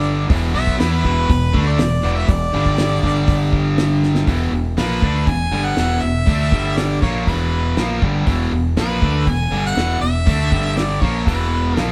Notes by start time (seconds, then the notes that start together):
Already playing: G1 G2 D3 G3 D5
0.29 E1 E2 B2 E3, kick, open hi-hat
0.54 B1 B2 F#3 B3 E5
0.67 kick
0.79 E2 E3 B3 E4 B4, snare, open hi-hat
0.91 B4
1.04 E1 E2 B2 E3, kick
1.29 E1 E2 B2, kick, open hi-hat
1.53 D2 D3 A3 D4, kick
1.67 D5
1.79 E1 E2 B2, snare, open hi-hat
2.03 E1 E2 B2 E3
2.17 E5
2.28 E1 E2 B2 D5, kick, open hi-hat
2.53 G1 G2 D3 G3
2.66 kick
2.78 snare, open hi-hat
3.02 G1 G2 D3 G3, kick
3.28 kick, open hi-hat
3.53 kick
3.78 snare, open hi-hat
4.03 snare
4.15 snare
4.27 E1 E2 B2 E3, kick, open hi-hat
4.52 E1 E2 B2
4.77 A#1 A#2 F3 A#3 B4, snare, open hi-hat
5.02 D2 D3 A3 D4, kick
5.27 E1 E2 B2 G#5, kick, open hi-hat
5.51 G1 G2 D3 G3
5.65 F#5
5.77 E1 E2 B2 E3, snare, open hi-hat
6.01 E1 E2 B2 E5
6.26 D2 D3 A3 D4, kick, open hi-hat
6.52 G1 G2 D3 G3, kick
6.77 D5, snare, open hi-hat
7.01 A#1 A#2 F3 A#3 C#5, kick
7.27 E1 E2 B2 E3 B4, kick, open hi-hat
7.77 A#1 A#2 F3 A#3, snare, open hi-hat
8.02 G1 G2 D3 G3, kick
8.27 E1 E2 B2 E3, kick, open hi-hat
8.52 E1 E2 B2
8.77 A#1 A#2 F3 A#3 B4, snare, open hi-hat
9.01 D2 D3 A3 D4, kick
9.27 E1 E2 B2 G#5, kick, open hi-hat
9.51 G1 G2 D3 G3
9.66 F#5
9.76 E1 E2 B2 E3, snare, open hi-hat
10.01 E1 E2 B2 E5
10.26 D2 D3 A3 D4, kick, open hi-hat
10.52 G1 G2 D3 G3, kick
10.77 D5, snare, open hi-hat
11.01 A#1 A#2 F3 A#3 C#5, kick
11.26 E1 E2 B2 E3 B4, kick, open hi-hat
11.75 A#1 A#2 F3 A#3 A4, snare, open hi-hat